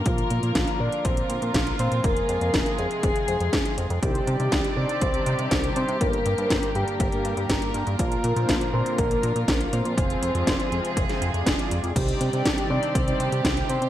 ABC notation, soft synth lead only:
X:1
M:4/4
L:1/8
Q:1/4=121
K:Cm
V:1 name="Soft synth lead"
F3 d c2 z c | B3 A4 z | G3 d c2 z c | B3 G4 z |
F3 c B2 z c- | c6 z2 | G3 d c2 z c |]